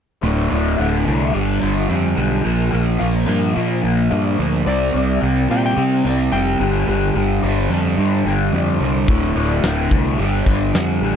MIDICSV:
0, 0, Header, 1, 5, 480
1, 0, Start_track
1, 0, Tempo, 553506
1, 206, Time_signature, 4, 2, 24, 8
1, 9678, End_track
2, 0, Start_track
2, 0, Title_t, "Electric slide guitar"
2, 0, Program_c, 0, 29
2, 4050, Note_on_c, 0, 74, 85
2, 4743, Note_off_c, 0, 74, 0
2, 4781, Note_on_c, 0, 79, 70
2, 4887, Note_off_c, 0, 79, 0
2, 4905, Note_on_c, 0, 79, 93
2, 5475, Note_off_c, 0, 79, 0
2, 5484, Note_on_c, 0, 79, 92
2, 5947, Note_off_c, 0, 79, 0
2, 9678, End_track
3, 0, Start_track
3, 0, Title_t, "Overdriven electric guitar"
3, 0, Program_c, 1, 29
3, 191, Note_on_c, 1, 38, 87
3, 201, Note_on_c, 1, 45, 88
3, 204, Note_on_c, 1, 50, 87
3, 433, Note_off_c, 1, 38, 0
3, 444, Note_off_c, 1, 45, 0
3, 444, Note_on_c, 1, 38, 73
3, 445, Note_off_c, 1, 50, 0
3, 455, Note_on_c, 1, 45, 91
3, 456, Note_on_c, 1, 50, 93
3, 667, Note_off_c, 1, 38, 0
3, 670, Note_off_c, 1, 45, 0
3, 677, Note_off_c, 1, 50, 0
3, 678, Note_on_c, 1, 38, 70
3, 680, Note_on_c, 1, 45, 67
3, 687, Note_on_c, 1, 50, 77
3, 911, Note_off_c, 1, 38, 0
3, 914, Note_off_c, 1, 45, 0
3, 920, Note_off_c, 1, 50, 0
3, 921, Note_on_c, 1, 38, 106
3, 924, Note_on_c, 1, 45, 101
3, 931, Note_on_c, 1, 50, 98
3, 1148, Note_off_c, 1, 38, 0
3, 1150, Note_off_c, 1, 45, 0
3, 1151, Note_off_c, 1, 50, 0
3, 1153, Note_on_c, 1, 43, 78
3, 1161, Note_on_c, 1, 50, 99
3, 1167, Note_on_c, 1, 55, 96
3, 1383, Note_off_c, 1, 43, 0
3, 1387, Note_off_c, 1, 50, 0
3, 1391, Note_off_c, 1, 55, 0
3, 1393, Note_on_c, 1, 43, 87
3, 1397, Note_on_c, 1, 50, 89
3, 1402, Note_on_c, 1, 55, 94
3, 1613, Note_off_c, 1, 43, 0
3, 1619, Note_off_c, 1, 50, 0
3, 1622, Note_off_c, 1, 55, 0
3, 1623, Note_on_c, 1, 43, 74
3, 1630, Note_on_c, 1, 50, 75
3, 1632, Note_on_c, 1, 55, 87
3, 1866, Note_off_c, 1, 43, 0
3, 1869, Note_off_c, 1, 50, 0
3, 1875, Note_off_c, 1, 55, 0
3, 1877, Note_on_c, 1, 43, 78
3, 1879, Note_on_c, 1, 50, 85
3, 1886, Note_on_c, 1, 55, 84
3, 2105, Note_off_c, 1, 43, 0
3, 2107, Note_off_c, 1, 50, 0
3, 2108, Note_on_c, 1, 46, 86
3, 2110, Note_off_c, 1, 55, 0
3, 2115, Note_on_c, 1, 53, 84
3, 2119, Note_on_c, 1, 58, 96
3, 2331, Note_off_c, 1, 46, 0
3, 2341, Note_off_c, 1, 53, 0
3, 2341, Note_off_c, 1, 58, 0
3, 2342, Note_on_c, 1, 46, 96
3, 2352, Note_on_c, 1, 53, 89
3, 2352, Note_on_c, 1, 58, 80
3, 2574, Note_off_c, 1, 46, 0
3, 2581, Note_off_c, 1, 53, 0
3, 2584, Note_off_c, 1, 58, 0
3, 2585, Note_on_c, 1, 46, 81
3, 2592, Note_on_c, 1, 53, 75
3, 2594, Note_on_c, 1, 58, 70
3, 2813, Note_off_c, 1, 46, 0
3, 2823, Note_on_c, 1, 46, 93
3, 2824, Note_off_c, 1, 53, 0
3, 2829, Note_off_c, 1, 58, 0
3, 2835, Note_on_c, 1, 53, 90
3, 2839, Note_on_c, 1, 58, 101
3, 3064, Note_off_c, 1, 46, 0
3, 3067, Note_off_c, 1, 53, 0
3, 3074, Note_on_c, 1, 46, 67
3, 3076, Note_off_c, 1, 58, 0
3, 3078, Note_on_c, 1, 53, 84
3, 3086, Note_on_c, 1, 58, 95
3, 3307, Note_off_c, 1, 46, 0
3, 3311, Note_off_c, 1, 53, 0
3, 3317, Note_on_c, 1, 46, 87
3, 3318, Note_off_c, 1, 58, 0
3, 3322, Note_on_c, 1, 53, 91
3, 3328, Note_on_c, 1, 58, 90
3, 3550, Note_off_c, 1, 46, 0
3, 3554, Note_off_c, 1, 53, 0
3, 3559, Note_off_c, 1, 58, 0
3, 3560, Note_on_c, 1, 46, 76
3, 3565, Note_on_c, 1, 53, 97
3, 3570, Note_on_c, 1, 58, 99
3, 3791, Note_off_c, 1, 46, 0
3, 3797, Note_off_c, 1, 53, 0
3, 3801, Note_off_c, 1, 58, 0
3, 3801, Note_on_c, 1, 46, 84
3, 3807, Note_on_c, 1, 53, 88
3, 3812, Note_on_c, 1, 58, 91
3, 4026, Note_off_c, 1, 46, 0
3, 4029, Note_off_c, 1, 53, 0
3, 4032, Note_off_c, 1, 58, 0
3, 4035, Note_on_c, 1, 48, 89
3, 4042, Note_on_c, 1, 55, 91
3, 4044, Note_on_c, 1, 60, 96
3, 4274, Note_off_c, 1, 48, 0
3, 4284, Note_on_c, 1, 48, 89
3, 4288, Note_off_c, 1, 55, 0
3, 4288, Note_off_c, 1, 60, 0
3, 4292, Note_on_c, 1, 55, 90
3, 4298, Note_on_c, 1, 60, 94
3, 4508, Note_off_c, 1, 48, 0
3, 4517, Note_off_c, 1, 60, 0
3, 4518, Note_on_c, 1, 48, 75
3, 4519, Note_off_c, 1, 55, 0
3, 4523, Note_on_c, 1, 55, 71
3, 4527, Note_on_c, 1, 60, 80
3, 4746, Note_off_c, 1, 48, 0
3, 4756, Note_on_c, 1, 48, 93
3, 4762, Note_off_c, 1, 55, 0
3, 4764, Note_off_c, 1, 60, 0
3, 4766, Note_on_c, 1, 55, 94
3, 4775, Note_on_c, 1, 60, 98
3, 4988, Note_off_c, 1, 48, 0
3, 4989, Note_off_c, 1, 55, 0
3, 4998, Note_off_c, 1, 60, 0
3, 4999, Note_on_c, 1, 48, 70
3, 5000, Note_on_c, 1, 55, 74
3, 5008, Note_on_c, 1, 60, 84
3, 5235, Note_off_c, 1, 48, 0
3, 5245, Note_off_c, 1, 55, 0
3, 5245, Note_on_c, 1, 48, 82
3, 5249, Note_off_c, 1, 60, 0
3, 5255, Note_on_c, 1, 55, 91
3, 5259, Note_on_c, 1, 60, 89
3, 5474, Note_off_c, 1, 48, 0
3, 5482, Note_off_c, 1, 55, 0
3, 5484, Note_off_c, 1, 60, 0
3, 5484, Note_on_c, 1, 48, 88
3, 5492, Note_on_c, 1, 55, 78
3, 5495, Note_on_c, 1, 60, 102
3, 5707, Note_off_c, 1, 48, 0
3, 5712, Note_off_c, 1, 55, 0
3, 5713, Note_off_c, 1, 60, 0
3, 5720, Note_on_c, 1, 43, 98
3, 5730, Note_on_c, 1, 50, 103
3, 5735, Note_on_c, 1, 55, 103
3, 5945, Note_off_c, 1, 43, 0
3, 5953, Note_off_c, 1, 50, 0
3, 5953, Note_off_c, 1, 55, 0
3, 5956, Note_on_c, 1, 43, 81
3, 5963, Note_on_c, 1, 50, 89
3, 5963, Note_on_c, 1, 55, 95
3, 6187, Note_off_c, 1, 43, 0
3, 6193, Note_off_c, 1, 50, 0
3, 6197, Note_on_c, 1, 43, 85
3, 6203, Note_on_c, 1, 50, 97
3, 6204, Note_off_c, 1, 55, 0
3, 6214, Note_on_c, 1, 55, 89
3, 6426, Note_off_c, 1, 43, 0
3, 6436, Note_on_c, 1, 43, 77
3, 6437, Note_off_c, 1, 50, 0
3, 6439, Note_off_c, 1, 55, 0
3, 6448, Note_on_c, 1, 50, 75
3, 6450, Note_on_c, 1, 55, 86
3, 6669, Note_off_c, 1, 43, 0
3, 6676, Note_off_c, 1, 50, 0
3, 6678, Note_off_c, 1, 55, 0
3, 6680, Note_on_c, 1, 43, 84
3, 6686, Note_on_c, 1, 50, 104
3, 6688, Note_on_c, 1, 55, 103
3, 6912, Note_off_c, 1, 43, 0
3, 6918, Note_off_c, 1, 50, 0
3, 6920, Note_off_c, 1, 55, 0
3, 6922, Note_on_c, 1, 43, 84
3, 6929, Note_on_c, 1, 50, 78
3, 6930, Note_on_c, 1, 55, 81
3, 7148, Note_off_c, 1, 43, 0
3, 7157, Note_off_c, 1, 50, 0
3, 7158, Note_on_c, 1, 43, 75
3, 7163, Note_off_c, 1, 55, 0
3, 7168, Note_on_c, 1, 50, 79
3, 7174, Note_on_c, 1, 55, 101
3, 7389, Note_off_c, 1, 43, 0
3, 7395, Note_off_c, 1, 50, 0
3, 7399, Note_on_c, 1, 43, 81
3, 7402, Note_off_c, 1, 55, 0
3, 7406, Note_on_c, 1, 50, 82
3, 7412, Note_on_c, 1, 55, 87
3, 7633, Note_off_c, 1, 43, 0
3, 7637, Note_off_c, 1, 50, 0
3, 7643, Note_on_c, 1, 43, 82
3, 7646, Note_off_c, 1, 55, 0
3, 7647, Note_on_c, 1, 50, 81
3, 7657, Note_on_c, 1, 55, 80
3, 7867, Note_off_c, 1, 43, 0
3, 7869, Note_off_c, 1, 50, 0
3, 7874, Note_off_c, 1, 55, 0
3, 7880, Note_on_c, 1, 38, 74
3, 7884, Note_on_c, 1, 45, 94
3, 7888, Note_on_c, 1, 50, 78
3, 8109, Note_off_c, 1, 38, 0
3, 8113, Note_off_c, 1, 50, 0
3, 8115, Note_off_c, 1, 45, 0
3, 8119, Note_on_c, 1, 38, 84
3, 8124, Note_on_c, 1, 50, 88
3, 8126, Note_on_c, 1, 45, 103
3, 8353, Note_off_c, 1, 38, 0
3, 8362, Note_off_c, 1, 45, 0
3, 8363, Note_on_c, 1, 38, 71
3, 8365, Note_off_c, 1, 50, 0
3, 8373, Note_on_c, 1, 45, 81
3, 8375, Note_on_c, 1, 50, 77
3, 8580, Note_off_c, 1, 38, 0
3, 8586, Note_off_c, 1, 45, 0
3, 8590, Note_on_c, 1, 38, 86
3, 8591, Note_off_c, 1, 50, 0
3, 8596, Note_on_c, 1, 45, 85
3, 8602, Note_on_c, 1, 50, 94
3, 8821, Note_off_c, 1, 38, 0
3, 8824, Note_off_c, 1, 45, 0
3, 8827, Note_off_c, 1, 50, 0
3, 8831, Note_on_c, 1, 43, 95
3, 8837, Note_on_c, 1, 50, 90
3, 8848, Note_on_c, 1, 55, 97
3, 9064, Note_off_c, 1, 43, 0
3, 9068, Note_off_c, 1, 50, 0
3, 9070, Note_off_c, 1, 55, 0
3, 9074, Note_on_c, 1, 43, 85
3, 9079, Note_on_c, 1, 50, 80
3, 9081, Note_on_c, 1, 55, 94
3, 9299, Note_off_c, 1, 43, 0
3, 9306, Note_off_c, 1, 50, 0
3, 9309, Note_on_c, 1, 43, 81
3, 9311, Note_off_c, 1, 55, 0
3, 9316, Note_on_c, 1, 50, 86
3, 9322, Note_on_c, 1, 55, 91
3, 9550, Note_off_c, 1, 43, 0
3, 9553, Note_off_c, 1, 50, 0
3, 9561, Note_on_c, 1, 43, 83
3, 9564, Note_off_c, 1, 55, 0
3, 9564, Note_on_c, 1, 50, 93
3, 9575, Note_on_c, 1, 55, 87
3, 9678, Note_off_c, 1, 43, 0
3, 9678, Note_off_c, 1, 50, 0
3, 9678, Note_off_c, 1, 55, 0
3, 9678, End_track
4, 0, Start_track
4, 0, Title_t, "Fingered electric bass"
4, 0, Program_c, 2, 33
4, 201, Note_on_c, 2, 26, 91
4, 411, Note_off_c, 2, 26, 0
4, 447, Note_on_c, 2, 26, 78
4, 654, Note_off_c, 2, 26, 0
4, 688, Note_on_c, 2, 26, 78
4, 894, Note_off_c, 2, 26, 0
4, 932, Note_on_c, 2, 36, 88
4, 1137, Note_off_c, 2, 36, 0
4, 1167, Note_on_c, 2, 31, 89
4, 1374, Note_off_c, 2, 31, 0
4, 1407, Note_on_c, 2, 31, 72
4, 1614, Note_off_c, 2, 31, 0
4, 1647, Note_on_c, 2, 41, 85
4, 1853, Note_off_c, 2, 41, 0
4, 1887, Note_on_c, 2, 35, 90
4, 2093, Note_off_c, 2, 35, 0
4, 2130, Note_on_c, 2, 34, 89
4, 2335, Note_off_c, 2, 34, 0
4, 2374, Note_on_c, 2, 34, 85
4, 2577, Note_off_c, 2, 34, 0
4, 2612, Note_on_c, 2, 34, 85
4, 2816, Note_off_c, 2, 34, 0
4, 2847, Note_on_c, 2, 43, 90
4, 3053, Note_off_c, 2, 43, 0
4, 3093, Note_on_c, 2, 46, 83
4, 3296, Note_off_c, 2, 46, 0
4, 3328, Note_on_c, 2, 34, 73
4, 3533, Note_off_c, 2, 34, 0
4, 3571, Note_on_c, 2, 43, 94
4, 3774, Note_off_c, 2, 43, 0
4, 3807, Note_on_c, 2, 38, 81
4, 4012, Note_off_c, 2, 38, 0
4, 4044, Note_on_c, 2, 36, 98
4, 4250, Note_off_c, 2, 36, 0
4, 4284, Note_on_c, 2, 36, 77
4, 4490, Note_off_c, 2, 36, 0
4, 4531, Note_on_c, 2, 36, 80
4, 4734, Note_off_c, 2, 36, 0
4, 4768, Note_on_c, 2, 46, 75
4, 4972, Note_off_c, 2, 46, 0
4, 5005, Note_on_c, 2, 48, 95
4, 5211, Note_off_c, 2, 48, 0
4, 5242, Note_on_c, 2, 36, 78
4, 5449, Note_off_c, 2, 36, 0
4, 5484, Note_on_c, 2, 29, 81
4, 5690, Note_off_c, 2, 29, 0
4, 5723, Note_on_c, 2, 31, 81
4, 5929, Note_off_c, 2, 31, 0
4, 5965, Note_on_c, 2, 31, 93
4, 6171, Note_off_c, 2, 31, 0
4, 6199, Note_on_c, 2, 31, 85
4, 6407, Note_off_c, 2, 31, 0
4, 6444, Note_on_c, 2, 31, 94
4, 6650, Note_off_c, 2, 31, 0
4, 6672, Note_on_c, 2, 41, 83
4, 6883, Note_off_c, 2, 41, 0
4, 6920, Note_on_c, 2, 43, 89
4, 7128, Note_off_c, 2, 43, 0
4, 7155, Note_on_c, 2, 31, 64
4, 7365, Note_off_c, 2, 31, 0
4, 7397, Note_on_c, 2, 41, 82
4, 7606, Note_off_c, 2, 41, 0
4, 7633, Note_on_c, 2, 36, 77
4, 7844, Note_off_c, 2, 36, 0
4, 7876, Note_on_c, 2, 26, 85
4, 8086, Note_off_c, 2, 26, 0
4, 8114, Note_on_c, 2, 26, 86
4, 8325, Note_off_c, 2, 26, 0
4, 8356, Note_on_c, 2, 26, 83
4, 8566, Note_off_c, 2, 26, 0
4, 8595, Note_on_c, 2, 36, 85
4, 8806, Note_off_c, 2, 36, 0
4, 8837, Note_on_c, 2, 31, 88
4, 9047, Note_off_c, 2, 31, 0
4, 9071, Note_on_c, 2, 31, 83
4, 9284, Note_off_c, 2, 31, 0
4, 9315, Note_on_c, 2, 41, 86
4, 9526, Note_off_c, 2, 41, 0
4, 9547, Note_on_c, 2, 33, 75
4, 9678, Note_off_c, 2, 33, 0
4, 9678, End_track
5, 0, Start_track
5, 0, Title_t, "Drums"
5, 7874, Note_on_c, 9, 46, 51
5, 7877, Note_on_c, 9, 36, 115
5, 7961, Note_off_c, 9, 46, 0
5, 7963, Note_off_c, 9, 36, 0
5, 8354, Note_on_c, 9, 46, 48
5, 8358, Note_on_c, 9, 38, 104
5, 8441, Note_off_c, 9, 46, 0
5, 8445, Note_off_c, 9, 38, 0
5, 8596, Note_on_c, 9, 36, 82
5, 8683, Note_off_c, 9, 36, 0
5, 8841, Note_on_c, 9, 46, 56
5, 8928, Note_off_c, 9, 46, 0
5, 9074, Note_on_c, 9, 36, 87
5, 9161, Note_off_c, 9, 36, 0
5, 9318, Note_on_c, 9, 46, 48
5, 9322, Note_on_c, 9, 38, 110
5, 9405, Note_off_c, 9, 46, 0
5, 9409, Note_off_c, 9, 38, 0
5, 9678, End_track
0, 0, End_of_file